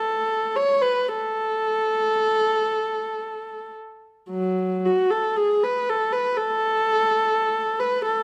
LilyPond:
\new Staff \with { instrumentName = "Viola" } { \time 4/4 \key a \lydian \tempo 4 = 58 a'8 cis''16 b'16 a'2~ a'8 r8 | fis8 fis'16 a'16 gis'16 b'16 a'16 b'16 a'4. b'16 a'16 | }